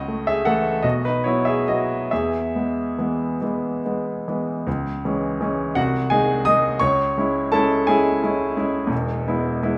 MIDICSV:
0, 0, Header, 1, 2, 480
1, 0, Start_track
1, 0, Key_signature, 4, "major"
1, 0, Tempo, 773196
1, 768, Tempo, 864553
1, 1248, Time_signature, 6, 3, 24, 8
1, 2208, Tempo, 828729
1, 2687, Key_signature, 4, "minor"
1, 2688, Tempo, 747198
1, 3168, Tempo, 707547
1, 4608, Tempo, 692841
1, 6166, End_track
2, 0, Start_track
2, 0, Title_t, "Grand piano"
2, 0, Program_c, 0, 0
2, 0, Control_c, 0, 64, 127
2, 0, Note_on_c, 0, 37, 47
2, 0, Note_on_c, 0, 66, 54
2, 0, Note_on_c, 0, 75, 72
2, 51, Note_on_c, 0, 57, 33
2, 141, Note_off_c, 0, 66, 0
2, 163, Note_off_c, 0, 75, 0
2, 168, Note_on_c, 0, 76, 67
2, 174, Note_on_c, 0, 68, 48
2, 261, Note_off_c, 0, 57, 0
2, 279, Note_off_c, 0, 68, 0
2, 281, Note_on_c, 0, 78, 71
2, 284, Note_off_c, 0, 76, 0
2, 287, Note_on_c, 0, 69, 55
2, 289, Note_on_c, 0, 52, 38
2, 293, Note_on_c, 0, 57, 40
2, 500, Note_off_c, 0, 52, 0
2, 502, Note_off_c, 0, 57, 0
2, 507, Note_off_c, 0, 69, 0
2, 512, Note_on_c, 0, 75, 69
2, 520, Note_off_c, 0, 78, 0
2, 521, Note_on_c, 0, 35, 49
2, 522, Note_on_c, 0, 66, 59
2, 531, Control_c, 0, 64, 0
2, 537, Note_off_c, 0, 37, 0
2, 634, Note_off_c, 0, 66, 0
2, 638, Note_off_c, 0, 75, 0
2, 642, Control_c, 0, 64, 127
2, 651, Note_on_c, 0, 71, 59
2, 659, Note_on_c, 0, 63, 45
2, 760, Note_off_c, 0, 35, 0
2, 768, Note_off_c, 0, 63, 0
2, 769, Note_on_c, 0, 73, 59
2, 771, Note_off_c, 0, 71, 0
2, 778, Note_on_c, 0, 54, 32
2, 778, Note_on_c, 0, 64, 49
2, 780, Note_on_c, 0, 59, 35
2, 880, Note_off_c, 0, 64, 0
2, 884, Note_off_c, 0, 73, 0
2, 887, Note_on_c, 0, 76, 58
2, 899, Note_on_c, 0, 68, 44
2, 985, Note_off_c, 0, 54, 0
2, 986, Note_off_c, 0, 59, 0
2, 1002, Note_off_c, 0, 68, 0
2, 1004, Note_off_c, 0, 76, 0
2, 1013, Note_on_c, 0, 75, 60
2, 1018, Note_on_c, 0, 54, 32
2, 1018, Note_on_c, 0, 59, 35
2, 1018, Note_on_c, 0, 66, 49
2, 1233, Note_off_c, 0, 54, 0
2, 1234, Note_off_c, 0, 59, 0
2, 1239, Note_off_c, 0, 66, 0
2, 1253, Note_off_c, 0, 75, 0
2, 1254, Note_on_c, 0, 76, 54
2, 1260, Control_c, 0, 64, 0
2, 1262, Note_on_c, 0, 68, 42
2, 1263, Note_on_c, 0, 40, 41
2, 1356, Control_c, 0, 64, 127
2, 1493, Note_off_c, 0, 40, 0
2, 1499, Note_on_c, 0, 56, 30
2, 1500, Note_on_c, 0, 59, 30
2, 1712, Note_off_c, 0, 56, 0
2, 1712, Note_off_c, 0, 59, 0
2, 1739, Note_on_c, 0, 52, 31
2, 1741, Note_on_c, 0, 56, 32
2, 1746, Note_on_c, 0, 59, 32
2, 1950, Note_off_c, 0, 52, 0
2, 1951, Note_off_c, 0, 56, 0
2, 1953, Note_off_c, 0, 59, 0
2, 1953, Note_off_c, 0, 68, 0
2, 1971, Note_off_c, 0, 76, 0
2, 1976, Note_on_c, 0, 56, 34
2, 1977, Note_on_c, 0, 52, 33
2, 1982, Note_on_c, 0, 59, 36
2, 2189, Note_off_c, 0, 52, 0
2, 2189, Note_off_c, 0, 56, 0
2, 2192, Note_off_c, 0, 59, 0
2, 2220, Note_on_c, 0, 56, 30
2, 2223, Note_on_c, 0, 59, 33
2, 2440, Note_off_c, 0, 56, 0
2, 2441, Note_off_c, 0, 59, 0
2, 2467, Note_on_c, 0, 52, 31
2, 2468, Note_on_c, 0, 56, 29
2, 2471, Note_on_c, 0, 59, 31
2, 2670, Note_off_c, 0, 52, 0
2, 2671, Note_off_c, 0, 56, 0
2, 2672, Note_off_c, 0, 59, 0
2, 2693, Note_on_c, 0, 37, 51
2, 2700, Control_c, 0, 64, 0
2, 2807, Control_c, 0, 64, 127
2, 2924, Note_off_c, 0, 37, 0
2, 2939, Note_on_c, 0, 52, 34
2, 2940, Note_on_c, 0, 56, 37
2, 2943, Note_on_c, 0, 61, 35
2, 3149, Note_off_c, 0, 52, 0
2, 3149, Note_off_c, 0, 56, 0
2, 3151, Note_off_c, 0, 61, 0
2, 3168, Note_on_c, 0, 52, 37
2, 3174, Note_on_c, 0, 56, 43
2, 3175, Note_on_c, 0, 61, 43
2, 3385, Note_off_c, 0, 52, 0
2, 3389, Note_off_c, 0, 56, 0
2, 3389, Note_off_c, 0, 61, 0
2, 3403, Note_on_c, 0, 78, 78
2, 3409, Note_on_c, 0, 36, 56
2, 3410, Note_on_c, 0, 66, 62
2, 3421, Control_c, 0, 64, 0
2, 3523, Control_c, 0, 64, 127
2, 3629, Note_off_c, 0, 66, 0
2, 3639, Note_off_c, 0, 36, 0
2, 3639, Note_on_c, 0, 80, 73
2, 3643, Note_off_c, 0, 78, 0
2, 3646, Note_on_c, 0, 51, 38
2, 3647, Note_on_c, 0, 56, 39
2, 3647, Note_on_c, 0, 68, 56
2, 3649, Note_on_c, 0, 63, 46
2, 3857, Note_off_c, 0, 51, 0
2, 3857, Note_off_c, 0, 56, 0
2, 3859, Note_off_c, 0, 63, 0
2, 3864, Note_off_c, 0, 68, 0
2, 3876, Note_off_c, 0, 80, 0
2, 3876, Note_on_c, 0, 87, 84
2, 3885, Note_on_c, 0, 51, 38
2, 3886, Note_on_c, 0, 75, 58
2, 3891, Note_on_c, 0, 56, 39
2, 3891, Note_on_c, 0, 63, 41
2, 4097, Note_off_c, 0, 51, 0
2, 4100, Note_off_c, 0, 56, 0
2, 4100, Note_off_c, 0, 63, 0
2, 4105, Note_off_c, 0, 75, 0
2, 4109, Note_on_c, 0, 85, 84
2, 4116, Note_off_c, 0, 87, 0
2, 4117, Note_on_c, 0, 73, 61
2, 4119, Note_on_c, 0, 37, 49
2, 4131, Control_c, 0, 64, 0
2, 4228, Control_c, 0, 64, 127
2, 4356, Note_off_c, 0, 37, 0
2, 4368, Note_on_c, 0, 56, 36
2, 4369, Note_on_c, 0, 61, 35
2, 4373, Note_on_c, 0, 64, 37
2, 4580, Note_off_c, 0, 73, 0
2, 4585, Note_off_c, 0, 56, 0
2, 4586, Note_off_c, 0, 61, 0
2, 4588, Note_off_c, 0, 64, 0
2, 4600, Note_on_c, 0, 81, 73
2, 4603, Note_off_c, 0, 85, 0
2, 4604, Note_on_c, 0, 69, 58
2, 4609, Note_on_c, 0, 61, 43
2, 4610, Note_on_c, 0, 56, 42
2, 4612, Note_on_c, 0, 64, 48
2, 4825, Note_off_c, 0, 61, 0
2, 4826, Note_off_c, 0, 56, 0
2, 4827, Note_off_c, 0, 64, 0
2, 4829, Note_off_c, 0, 69, 0
2, 4843, Note_on_c, 0, 80, 72
2, 4844, Note_off_c, 0, 81, 0
2, 4848, Note_on_c, 0, 56, 44
2, 4851, Note_on_c, 0, 61, 43
2, 4851, Note_on_c, 0, 68, 53
2, 4854, Note_on_c, 0, 64, 49
2, 5062, Note_off_c, 0, 56, 0
2, 5063, Note_off_c, 0, 61, 0
2, 5065, Note_off_c, 0, 64, 0
2, 5096, Note_on_c, 0, 61, 43
2, 5097, Note_on_c, 0, 56, 42
2, 5098, Note_on_c, 0, 64, 44
2, 5306, Note_off_c, 0, 61, 0
2, 5307, Note_off_c, 0, 56, 0
2, 5307, Note_off_c, 0, 64, 0
2, 5328, Note_on_c, 0, 56, 42
2, 5330, Note_on_c, 0, 61, 44
2, 5335, Note_on_c, 0, 64, 46
2, 5537, Note_on_c, 0, 40, 55
2, 5539, Note_off_c, 0, 68, 0
2, 5543, Note_off_c, 0, 56, 0
2, 5544, Note_off_c, 0, 61, 0
2, 5547, Note_off_c, 0, 64, 0
2, 5554, Note_on_c, 0, 28, 52
2, 5563, Note_off_c, 0, 80, 0
2, 5577, Control_c, 0, 64, 0
2, 5670, Control_c, 0, 64, 127
2, 5786, Note_off_c, 0, 40, 0
2, 5795, Note_off_c, 0, 28, 0
2, 5816, Note_on_c, 0, 56, 39
2, 5820, Note_on_c, 0, 64, 41
2, 5824, Note_on_c, 0, 59, 38
2, 6029, Note_off_c, 0, 56, 0
2, 6031, Note_off_c, 0, 64, 0
2, 6034, Note_off_c, 0, 59, 0
2, 6063, Note_on_c, 0, 56, 44
2, 6064, Note_on_c, 0, 59, 43
2, 6066, Note_on_c, 0, 64, 49
2, 6166, Note_off_c, 0, 56, 0
2, 6166, Note_off_c, 0, 59, 0
2, 6166, Note_off_c, 0, 64, 0
2, 6166, End_track
0, 0, End_of_file